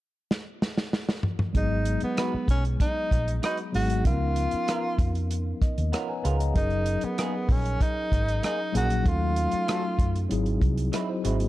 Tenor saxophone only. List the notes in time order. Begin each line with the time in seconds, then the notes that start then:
1.57 D#4
2.03 B3
2.51 C#4
2.81 D#4
3.45 D#4
3.75 F#4
4.07 F4
6.57 D#4
7.04 B3
7.52 C#4
7.83 D#4
8.45 D#4
8.77 F#4
9.08 F4